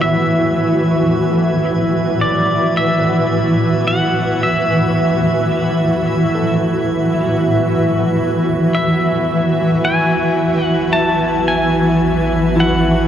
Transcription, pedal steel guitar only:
0.01 1.62 E5 loud
2.21 2.78 D5 medium
2.77 3.87 E5 loud
3.87 4.43 F#5 medium
4.43 6.56 E5 medium
8.75 9.84 E5 medium
9.85 10.63 G#5 medium
10.63 10.92 F#5 medium
10.93 11.48 A5 medium
11.48 12.60 G#5 medium
12.60 13.08 F#5 medium

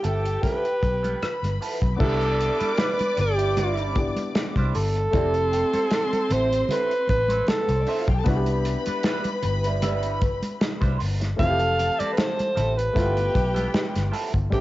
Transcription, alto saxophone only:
0.05 0.43 A4 medium
0.44 1.57 B4 medium
2.00 2.75 A4 loud
2.73 2.81 A#4 medium
2.79 3.18 B4 loud
3.21 3.94 G4 medium
4.75 6.34 A4 loud
6.33 6.65 C5 loud
6.65 6.72 C5 medium
6.71 7.09 B4 loud
7.09 7.46 B4 loud
7.49 8.05 A4 medium
11.39 12.01 F5 loud
12.00 12.11 D5 medium
12.13 12.19 B4 medium
12.17 12.79 C5 loud
12.77 14.13 B4 medium
14.53 14.61 G4 medium

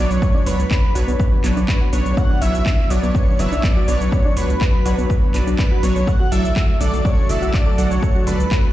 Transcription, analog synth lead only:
0.00 0.12 D5 loud
0.10 0.48 C#5 medium
0.46 1.44 B4 medium
1.68 1.79 B4 medium
1.93 2.19 C#5 loud
2.17 2.41 F#5 loud
2.42 2.92 E5 loud
2.90 3.16 D5 loud
3.15 3.41 C#5 loud
3.39 3.65 E5 loud
3.63 4.02 D5 medium
4.00 4.38 C#5 medium
4.37 5.34 B4 medium
5.59 5.85 B4 medium
5.83 6.09 C#5 loud
6.07 6.31 F#5 loud
6.32 6.77 E5 loud
6.81 7.03 D5 loud
7.05 7.31 C#5 loud
7.29 7.55 E5 loud
7.54 7.90 D5 loud
7.91 8.24 C#5 medium
8.27 8.73 B4 medium

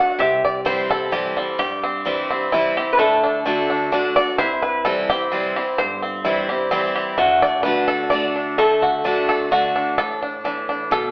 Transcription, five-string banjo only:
0.00 0.18 F#5 loud
0.20 0.44 E5 loud
0.45 0.66 D5 medium
0.66 0.91 C5 medium
0.91 1.55 A4 loud
1.12 1.58 G4 medium
1.37 2.01 G3 medium
1.59 2.73 G4 medium
1.83 2.29 C4 medium
2.06 2.72 G3 medium
2.30 2.95 C4 medium
2.52 2.99 E4 medium
2.77 2.99 G4 medium
2.99 3.44 A3 medium
3.23 3.69 D4 medium
3.46 4.12 A3 medium
3.70 3.91 D4 medium
3.92 4.16 D4 medium
4.16 4.37 D5 loud
4.38 4.62 C5 loud
4.62 4.86 B4 medium
4.85 5.10 A4 medium
5.10 5.55 G4 loud
5.32 5.98 C4 medium
5.56 6.21 G4 medium
5.78 6.24 C5 loud
6.02 6.67 C4 medium
6.25 6.91 E4 medium
6.49 6.94 G4 medium
6.71 7.18 C4 medium
6.96 7.18 G4 medium
7.18 7.84 A3 medium
7.42 7.63 D5 loud
7.63 7.89 B4 loud
7.88 8.11 A4 medium
8.10 8.33 D5 loud
8.36 8.58 D4 medium
8.58 9.98 A3 medium
8.82 9.28 F#4 medium
9.05 9.71 D4 medium
9.29 9.51 A4 medium
9.52 9.95 F#4 medium
9.76 10.21 D4 medium
9.98 10.22 A4 loud
10.22 10.44 D4 medium
10.45 10.68 D4 medium
10.69 11.11 D4 medium
10.92 11.11 A4 loud

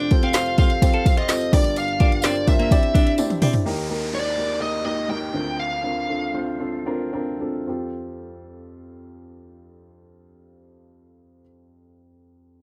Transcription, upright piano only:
0.00 1.49 F1 medium
0.00 1.49 F2 medium
0.00 0.11 C4 medium
0.00 0.11 F4 medium
0.00 0.11 G4 medium
0.00 0.12 A4 medium
0.00 0.12 C5 medium
0.11 0.31 C4 medium
0.11 0.31 F4 medium
0.11 0.31 G4 medium
0.11 0.31 A4 medium
0.11 0.31 C5 loud
0.34 0.54 C4 medium
0.34 0.54 F4 medium
0.34 0.55 G4 medium
0.34 0.55 A4 medium
0.34 0.55 C5 loud
0.58 0.78 C4 medium
0.58 0.78 F4 medium
0.58 0.78 G4 medium
0.58 0.78 A4 medium
0.58 0.78 C5 medium
0.82 1.02 C4 loud
0.82 1.02 F4 medium
0.82 1.02 G4 medium
0.82 1.02 A4 medium
0.82 1.02 C5 loud
1.06 1.25 C4 medium
1.06 1.25 F4 medium
1.06 1.26 G4 medium
1.06 1.26 A4 medium
1.06 1.26 C5 medium
1.29 1.49 C4 medium
1.29 1.49 F4 medium
1.29 1.49 G4 medium
1.29 1.49 A4 medium
1.29 1.49 C5 medium
1.53 2.67 G1 medium
1.53 2.67 G2 medium
1.53 1.92 D4 medium
1.53 1.92 F4 medium
1.53 1.92 G4 medium
1.53 1.92 A#4 medium
1.53 1.93 D5 medium
2.00 2.20 D4 medium
2.00 2.20 F4 medium
2.00 2.20 G4 medium
2.00 2.20 A#4 medium
2.00 2.20 D5 medium
2.23 2.43 D4 medium
2.23 2.43 F4 medium
2.23 2.44 G4 medium
2.23 2.44 A#4 medium
2.23 2.44 C5 medium
2.47 2.67 D4 medium
2.47 2.67 F4 medium
2.47 2.67 G4 medium
2.47 2.67 A#4 medium
2.47 2.67 C5 medium
2.71 3.62 C2 medium
2.71 3.62 C3 medium
2.71 2.91 D4 medium
2.71 2.91 E4 loud
2.71 2.91 G4 loud
2.71 2.91 C5 medium
2.71 2.91 D5 loud
2.94 3.14 D4 medium
2.94 3.14 E4 medium
2.94 3.14 G4 medium
2.94 3.15 C5 medium
2.94 3.15 D5 medium
3.18 3.38 D4 medium
3.18 3.38 E4 medium
3.18 3.38 G4 medium
3.18 3.38 C5 medium
3.18 3.38 D5 medium
3.42 3.62 D4 medium
3.42 3.62 E4 medium
3.42 3.62 G4 medium
3.42 3.62 C5 medium
3.42 3.62 D5 medium
3.65 5.30 D#2 medium
3.65 5.30 D#3 medium
3.65 3.85 A#3 medium
3.65 3.85 D#4 medium
3.65 3.86 G4 medium
3.65 3.86 A#4 loud
3.89 4.09 A#3 medium
3.89 4.09 D#4 medium
3.89 4.09 G4 medium
3.89 4.09 A#4 medium
4.13 4.33 A#3 medium
4.13 4.33 D#4 medium
4.13 4.33 G4 medium
4.13 4.33 C5 medium
4.37 4.57 A#3 medium
4.37 4.57 D#4 medium
4.37 4.57 G4 medium
4.37 4.57 A#4 medium
4.60 4.81 A#3 medium
4.60 4.81 D#4 medium
4.60 4.81 G4 medium
4.60 4.81 A#4 medium
4.85 5.05 A#3 medium
4.85 5.05 D#4 medium
4.85 5.05 G4 medium
4.85 5.05 A#4 medium
5.09 5.29 A#3 medium
5.09 5.29 D#4 medium
5.09 5.29 G4 medium
5.09 5.30 A#4 medium
5.33 7.36 D2 medium
5.33 7.36 D3 medium
5.33 5.75 C4 medium
5.33 5.75 D4 medium
5.33 5.75 F4 medium
5.33 5.75 A#4 medium
5.83 6.04 C4 medium
5.83 6.04 D4 medium
5.83 6.04 F4 medium
5.83 6.05 A#4 medium
6.09 6.30 C4 medium
6.09 6.30 D4 medium
6.09 6.30 F4 medium
6.09 6.30 A4 medium
6.34 6.56 C4 medium
6.34 6.56 D4 medium
6.34 6.56 F4 medium
6.34 6.56 C5 medium
6.60 6.82 C4 medium
6.60 6.82 D4 medium
6.60 6.82 F4 medium
6.60 6.82 A4 medium
6.86 7.08 C4 medium
6.86 7.08 D4 medium
6.86 7.09 F4 medium
6.86 7.09 A#4 medium
7.13 7.35 C4 medium
7.13 7.36 D4 medium
7.13 7.36 F4 medium
7.13 7.36 A#4 medium
7.40 7.63 C4 medium
7.40 7.63 D4 medium
7.40 7.63 F4 medium
7.40 7.63 A4 medium
7.66 11.41 F2 medium
7.66 11.39 C4 medium
7.66 11.40 F4 medium
7.66 11.41 G4 medium
7.66 11.42 A4 medium

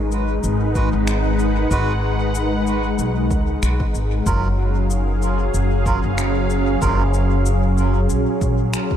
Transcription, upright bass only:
0.00 0.41 G#1 loud
0.44 0.90 G#1 medium
0.93 1.68 G#1 medium
1.71 2.96 G#1 loud
2.99 3.31 B1 medium
3.31 3.59 C#2 medium
3.62 3.78 B1 medium
3.95 4.23 G#1 medium
4.26 5.51 F#1 loud
5.54 6.00 F#1 medium
6.04 6.79 F#1 medium
6.82 8.07 F#1 loud
8.10 8.25 A#1 medium
8.41 8.70 A#1 medium

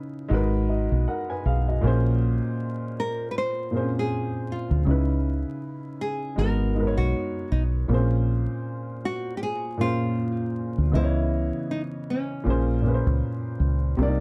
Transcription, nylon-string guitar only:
3.00 3.31 A#4 medium
3.31 3.35 B4 medium
3.38 3.92 C5 loud
3.99 4.52 G#4 medium
4.52 4.85 F4 medium
6.01 6.36 G#4 medium
6.39 6.95 A#4 medium
6.97 7.48 F#4 medium
7.52 7.62 D#4 medium
9.05 9.37 F#4 loud
9.37 9.42 G4 medium
9.43 9.78 G#4 loud
9.81 10.98 F4 loud
10.95 11.71 E4 medium
11.71 11.81 D#4 medium
12.10 13.57 C#4 medium

